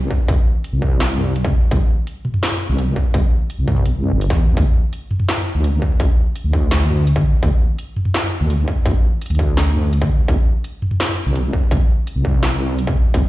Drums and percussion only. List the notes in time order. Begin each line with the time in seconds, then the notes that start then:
0.11 kick
0.28 kick, closed hi-hat
0.64 closed hi-hat
0.82 kick
1.00 snare, closed hi-hat
1.18 mid tom
1.36 closed hi-hat
1.45 kick
1.71 kick, closed hi-hat
2.07 closed hi-hat
2.25 mid tom
2.34 mid tom
2.43 snare, closed hi-hat
2.52 mid tom
2.78 closed hi-hat
2.96 kick
3.14 kick, closed hi-hat
3.50 closed hi-hat
3.68 kick, closed hi-hat, mid tom
3.77 mid tom
3.86 closed hi-hat
4.03 mid tom
4.21 closed hi-hat
4.30 kick, snare
4.57 kick, closed hi-hat
4.93 closed hi-hat
5.11 mid tom
5.20 mid tom
5.29 snare, closed hi-hat
5.37 mid tom
5.64 closed hi-hat
5.82 kick
6.00 kick, closed hi-hat
6.36 closed hi-hat
6.53 kick
6.71 snare, closed hi-hat
6.89 mid tom
7.07 closed hi-hat
7.16 kick
7.43 kick, closed hi-hat
7.79 closed hi-hat
7.96 mid tom
8.05 mid tom
8.14 snare, closed hi-hat
8.23 mid tom
8.50 closed hi-hat
8.68 kick
8.86 kick, closed hi-hat
9.22 closed hi-hat
9.26 closed hi-hat
9.30 closed hi-hat
9.35 closed hi-hat
9.39 kick, closed hi-hat
9.57 snare, closed hi-hat
9.75 mid tom
9.93 closed hi-hat
10.02 kick
10.28 kick, closed hi-hat
10.64 closed hi-hat
10.82 mid tom
10.91 mid tom
11.00 snare, closed hi-hat
11.09 mid tom
11.36 closed hi-hat
11.53 kick
11.71 kick, closed hi-hat
12.07 closed hi-hat
12.25 kick
12.43 snare, closed hi-hat
12.79 closed hi-hat
12.87 kick
13.14 kick, closed hi-hat